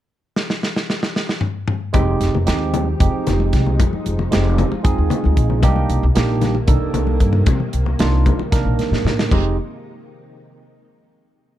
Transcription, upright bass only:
0, 0, Header, 1, 3, 480
1, 0, Start_track
1, 0, Tempo, 527241
1, 81, Time_signature, 7, 3, 24, 8
1, 10547, End_track
2, 0, Start_track
2, 0, Title_t, "Upright bass"
2, 0, Program_c, 0, 32
2, 1768, Note_on_c, 0, 29, 97
2, 1972, Note_off_c, 0, 29, 0
2, 2006, Note_on_c, 0, 29, 82
2, 2109, Note_off_c, 0, 29, 0
2, 2132, Note_on_c, 0, 29, 78
2, 2233, Note_off_c, 0, 29, 0
2, 2256, Note_on_c, 0, 39, 90
2, 2661, Note_off_c, 0, 39, 0
2, 2735, Note_on_c, 0, 29, 91
2, 2835, Note_off_c, 0, 29, 0
2, 2983, Note_on_c, 0, 29, 76
2, 3181, Note_off_c, 0, 29, 0
2, 3217, Note_on_c, 0, 36, 85
2, 3418, Note_off_c, 0, 36, 0
2, 3458, Note_on_c, 0, 41, 97
2, 3557, Note_off_c, 0, 41, 0
2, 3699, Note_on_c, 0, 29, 83
2, 3899, Note_off_c, 0, 29, 0
2, 3940, Note_on_c, 0, 29, 89
2, 4241, Note_off_c, 0, 29, 0
2, 4413, Note_on_c, 0, 41, 88
2, 4513, Note_off_c, 0, 41, 0
2, 4535, Note_on_c, 0, 39, 79
2, 4634, Note_off_c, 0, 39, 0
2, 4781, Note_on_c, 0, 38, 86
2, 4878, Note_off_c, 0, 38, 0
2, 4891, Note_on_c, 0, 34, 86
2, 5127, Note_off_c, 0, 34, 0
2, 5127, Note_on_c, 0, 36, 96
2, 5331, Note_off_c, 0, 36, 0
2, 5367, Note_on_c, 0, 36, 84
2, 5469, Note_off_c, 0, 36, 0
2, 5491, Note_on_c, 0, 36, 89
2, 5591, Note_off_c, 0, 36, 0
2, 5605, Note_on_c, 0, 34, 92
2, 6012, Note_off_c, 0, 34, 0
2, 6080, Note_on_c, 0, 36, 102
2, 6184, Note_off_c, 0, 36, 0
2, 6316, Note_on_c, 0, 36, 79
2, 6523, Note_off_c, 0, 36, 0
2, 6555, Note_on_c, 0, 43, 93
2, 6762, Note_off_c, 0, 43, 0
2, 6797, Note_on_c, 0, 48, 97
2, 6902, Note_off_c, 0, 48, 0
2, 7040, Note_on_c, 0, 36, 88
2, 7245, Note_off_c, 0, 36, 0
2, 7280, Note_on_c, 0, 36, 90
2, 7586, Note_off_c, 0, 36, 0
2, 7764, Note_on_c, 0, 48, 87
2, 7865, Note_off_c, 0, 48, 0
2, 7872, Note_on_c, 0, 34, 81
2, 7978, Note_off_c, 0, 34, 0
2, 8115, Note_on_c, 0, 45, 79
2, 8220, Note_off_c, 0, 45, 0
2, 8233, Note_on_c, 0, 45, 79
2, 8440, Note_off_c, 0, 45, 0
2, 8481, Note_on_c, 0, 29, 83
2, 8705, Note_off_c, 0, 29, 0
2, 10547, End_track
3, 0, Start_track
3, 0, Title_t, "Muted upright bass strokes"
3, 2855, Note_on_c, 9, 29, 30
3, 2946, Note_off_c, 9, 29, 0
3, 3580, Note_on_c, 9, 29, 31
3, 3671, Note_off_c, 9, 29, 0
3, 4297, Note_on_c, 9, 29, 38
3, 4388, Note_off_c, 9, 29, 0
3, 6205, Note_on_c, 9, 29, 36
3, 6296, Note_off_c, 9, 29, 0
3, 6917, Note_on_c, 9, 29, 36
3, 7009, Note_off_c, 9, 29, 0
3, 7638, Note_on_c, 9, 29, 33
3, 7729, Note_off_c, 9, 29, 0
3, 10547, End_track
0, 0, End_of_file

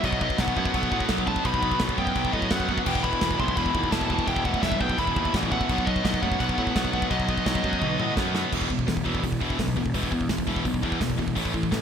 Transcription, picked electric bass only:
0, 0, Header, 1, 2, 480
1, 0, Start_track
1, 0, Tempo, 353982
1, 46, Time_signature, 4, 2, 24, 8
1, 16021, End_track
2, 0, Start_track
2, 0, Title_t, "Picked electric bass"
2, 0, Program_c, 0, 34
2, 52, Note_on_c, 0, 35, 101
2, 405, Note_off_c, 0, 35, 0
2, 524, Note_on_c, 0, 35, 108
2, 702, Note_off_c, 0, 35, 0
2, 769, Note_on_c, 0, 42, 111
2, 945, Note_off_c, 0, 42, 0
2, 1003, Note_on_c, 0, 35, 108
2, 1181, Note_off_c, 0, 35, 0
2, 1246, Note_on_c, 0, 45, 88
2, 1423, Note_off_c, 0, 45, 0
2, 1477, Note_on_c, 0, 35, 96
2, 1835, Note_off_c, 0, 35, 0
2, 1966, Note_on_c, 0, 35, 99
2, 2321, Note_off_c, 0, 35, 0
2, 2441, Note_on_c, 0, 35, 110
2, 2620, Note_off_c, 0, 35, 0
2, 2684, Note_on_c, 0, 42, 101
2, 2861, Note_off_c, 0, 42, 0
2, 2924, Note_on_c, 0, 35, 99
2, 3101, Note_off_c, 0, 35, 0
2, 3164, Note_on_c, 0, 45, 91
2, 3341, Note_off_c, 0, 45, 0
2, 3405, Note_on_c, 0, 42, 85
2, 3760, Note_off_c, 0, 42, 0
2, 3884, Note_on_c, 0, 28, 101
2, 4239, Note_off_c, 0, 28, 0
2, 4365, Note_on_c, 0, 28, 98
2, 4541, Note_off_c, 0, 28, 0
2, 4603, Note_on_c, 0, 35, 106
2, 4780, Note_off_c, 0, 35, 0
2, 4841, Note_on_c, 0, 28, 108
2, 5019, Note_off_c, 0, 28, 0
2, 5075, Note_on_c, 0, 39, 77
2, 5255, Note_off_c, 0, 39, 0
2, 5314, Note_on_c, 0, 28, 100
2, 5672, Note_off_c, 0, 28, 0
2, 5791, Note_on_c, 0, 28, 98
2, 6150, Note_off_c, 0, 28, 0
2, 6274, Note_on_c, 0, 28, 102
2, 6454, Note_off_c, 0, 28, 0
2, 6516, Note_on_c, 0, 35, 102
2, 6695, Note_off_c, 0, 35, 0
2, 6762, Note_on_c, 0, 28, 102
2, 6939, Note_off_c, 0, 28, 0
2, 7001, Note_on_c, 0, 39, 97
2, 7178, Note_off_c, 0, 39, 0
2, 7243, Note_on_c, 0, 33, 97
2, 7597, Note_off_c, 0, 33, 0
2, 7721, Note_on_c, 0, 35, 98
2, 8075, Note_off_c, 0, 35, 0
2, 8200, Note_on_c, 0, 35, 106
2, 8377, Note_off_c, 0, 35, 0
2, 8442, Note_on_c, 0, 42, 103
2, 8618, Note_off_c, 0, 42, 0
2, 8680, Note_on_c, 0, 35, 101
2, 8857, Note_off_c, 0, 35, 0
2, 8918, Note_on_c, 0, 45, 96
2, 9095, Note_off_c, 0, 45, 0
2, 9162, Note_on_c, 0, 35, 90
2, 9515, Note_off_c, 0, 35, 0
2, 9637, Note_on_c, 0, 35, 101
2, 9992, Note_off_c, 0, 35, 0
2, 10117, Note_on_c, 0, 35, 99
2, 10294, Note_off_c, 0, 35, 0
2, 10354, Note_on_c, 0, 42, 93
2, 10532, Note_off_c, 0, 42, 0
2, 10604, Note_on_c, 0, 35, 101
2, 10778, Note_off_c, 0, 35, 0
2, 10851, Note_on_c, 0, 45, 82
2, 11023, Note_off_c, 0, 45, 0
2, 11080, Note_on_c, 0, 42, 90
2, 11434, Note_off_c, 0, 42, 0
2, 11561, Note_on_c, 0, 28, 90
2, 11790, Note_off_c, 0, 28, 0
2, 11804, Note_on_c, 0, 28, 76
2, 12032, Note_off_c, 0, 28, 0
2, 12043, Note_on_c, 0, 28, 87
2, 12272, Note_off_c, 0, 28, 0
2, 12283, Note_on_c, 0, 28, 80
2, 12512, Note_off_c, 0, 28, 0
2, 12522, Note_on_c, 0, 28, 84
2, 12752, Note_off_c, 0, 28, 0
2, 12763, Note_on_c, 0, 28, 75
2, 12993, Note_off_c, 0, 28, 0
2, 13006, Note_on_c, 0, 35, 88
2, 13235, Note_off_c, 0, 35, 0
2, 13243, Note_on_c, 0, 28, 72
2, 13474, Note_off_c, 0, 28, 0
2, 13481, Note_on_c, 0, 28, 81
2, 13710, Note_off_c, 0, 28, 0
2, 13718, Note_on_c, 0, 40, 81
2, 13947, Note_off_c, 0, 40, 0
2, 13955, Note_on_c, 0, 28, 94
2, 14191, Note_off_c, 0, 28, 0
2, 14204, Note_on_c, 0, 28, 85
2, 14435, Note_off_c, 0, 28, 0
2, 14443, Note_on_c, 0, 35, 93
2, 14676, Note_off_c, 0, 35, 0
2, 14692, Note_on_c, 0, 40, 77
2, 14918, Note_off_c, 0, 40, 0
2, 14926, Note_on_c, 0, 28, 79
2, 15158, Note_off_c, 0, 28, 0
2, 15167, Note_on_c, 0, 28, 76
2, 15398, Note_off_c, 0, 28, 0
2, 15410, Note_on_c, 0, 33, 94
2, 15640, Note_off_c, 0, 33, 0
2, 15647, Note_on_c, 0, 33, 83
2, 15879, Note_off_c, 0, 33, 0
2, 15892, Note_on_c, 0, 33, 92
2, 16021, Note_off_c, 0, 33, 0
2, 16021, End_track
0, 0, End_of_file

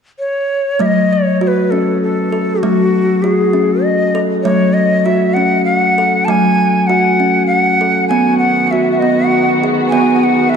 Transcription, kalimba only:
0, 0, Header, 1, 2, 480
1, 0, Start_track
1, 0, Tempo, 609756
1, 627, Time_signature, 3, 2, 24, 8
1, 8317, End_track
2, 0, Start_track
2, 0, Title_t, "Kalimba"
2, 0, Program_c, 0, 108
2, 625, Note_on_c, 0, 57, 66
2, 632, Note_on_c, 0, 54, 74
2, 1107, Note_off_c, 0, 57, 0
2, 1112, Note_on_c, 0, 66, 60
2, 1351, Note_off_c, 0, 66, 0
2, 1355, Note_on_c, 0, 61, 56
2, 1560, Note_off_c, 0, 54, 0
2, 1830, Note_on_c, 0, 69, 59
2, 1833, Note_off_c, 0, 61, 0
2, 2070, Note_off_c, 0, 69, 0
2, 2070, Note_on_c, 0, 54, 76
2, 2072, Note_on_c, 0, 57, 65
2, 2550, Note_on_c, 0, 66, 61
2, 2552, Note_off_c, 0, 57, 0
2, 2782, Note_on_c, 0, 61, 57
2, 2790, Note_off_c, 0, 66, 0
2, 2999, Note_off_c, 0, 54, 0
2, 3266, Note_on_c, 0, 69, 65
2, 3267, Note_off_c, 0, 61, 0
2, 3504, Note_on_c, 0, 57, 66
2, 3505, Note_on_c, 0, 54, 74
2, 3509, Note_off_c, 0, 69, 0
2, 3982, Note_on_c, 0, 66, 62
2, 3988, Note_off_c, 0, 57, 0
2, 4224, Note_on_c, 0, 61, 61
2, 4226, Note_off_c, 0, 66, 0
2, 4436, Note_off_c, 0, 54, 0
2, 4707, Note_off_c, 0, 61, 0
2, 4709, Note_on_c, 0, 69, 62
2, 4946, Note_on_c, 0, 54, 75
2, 4948, Note_on_c, 0, 57, 66
2, 4950, Note_off_c, 0, 69, 0
2, 5428, Note_on_c, 0, 66, 63
2, 5429, Note_off_c, 0, 57, 0
2, 5667, Note_on_c, 0, 61, 57
2, 5669, Note_off_c, 0, 66, 0
2, 5875, Note_off_c, 0, 54, 0
2, 6147, Note_off_c, 0, 61, 0
2, 6148, Note_on_c, 0, 69, 62
2, 6382, Note_on_c, 0, 59, 75
2, 6388, Note_off_c, 0, 69, 0
2, 6869, Note_on_c, 0, 66, 63
2, 7094, Note_off_c, 0, 59, 0
2, 7103, Note_on_c, 0, 59, 60
2, 7108, Note_off_c, 0, 66, 0
2, 7585, Note_off_c, 0, 59, 0
2, 7585, Note_on_c, 0, 68, 63
2, 7812, Note_on_c, 0, 59, 79
2, 7826, Note_off_c, 0, 68, 0
2, 8317, Note_off_c, 0, 59, 0
2, 8317, End_track
0, 0, End_of_file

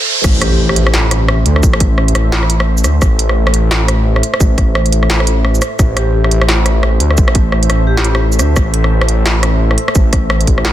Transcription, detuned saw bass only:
0, 0, Header, 1, 2, 480
1, 0, Start_track
1, 0, Key_signature, 0, "minor"
1, 0, Tempo, 346821
1, 335, Time_signature, 4, 2, 24, 8
1, 14845, End_track
2, 0, Start_track
2, 0, Title_t, "Detuned saw bass"
2, 0, Program_c, 0, 39
2, 333, Note_on_c, 0, 33, 103
2, 1042, Note_off_c, 0, 33, 0
2, 1049, Note_on_c, 0, 33, 103
2, 2000, Note_off_c, 0, 33, 0
2, 2018, Note_on_c, 0, 38, 95
2, 2241, Note_off_c, 0, 38, 0
2, 2256, Note_on_c, 0, 33, 101
2, 2963, Note_off_c, 0, 33, 0
2, 2976, Note_on_c, 0, 33, 104
2, 3933, Note_on_c, 0, 38, 106
2, 3954, Note_off_c, 0, 33, 0
2, 4159, Note_off_c, 0, 38, 0
2, 4177, Note_on_c, 0, 33, 101
2, 4884, Note_off_c, 0, 33, 0
2, 4895, Note_on_c, 0, 33, 104
2, 5843, Note_off_c, 0, 33, 0
2, 6097, Note_on_c, 0, 33, 103
2, 6804, Note_off_c, 0, 33, 0
2, 6814, Note_on_c, 0, 33, 103
2, 7762, Note_off_c, 0, 33, 0
2, 8015, Note_on_c, 0, 33, 101
2, 8723, Note_off_c, 0, 33, 0
2, 8732, Note_on_c, 0, 33, 102
2, 9681, Note_off_c, 0, 33, 0
2, 9694, Note_on_c, 0, 38, 97
2, 9919, Note_off_c, 0, 38, 0
2, 9936, Note_on_c, 0, 33, 104
2, 10643, Note_off_c, 0, 33, 0
2, 10659, Note_on_c, 0, 33, 105
2, 11617, Note_on_c, 0, 38, 103
2, 11638, Note_off_c, 0, 33, 0
2, 11841, Note_off_c, 0, 38, 0
2, 11857, Note_on_c, 0, 33, 105
2, 12564, Note_off_c, 0, 33, 0
2, 12573, Note_on_c, 0, 33, 103
2, 13522, Note_off_c, 0, 33, 0
2, 13776, Note_on_c, 0, 33, 104
2, 14483, Note_off_c, 0, 33, 0
2, 14497, Note_on_c, 0, 33, 104
2, 14845, Note_off_c, 0, 33, 0
2, 14845, End_track
0, 0, End_of_file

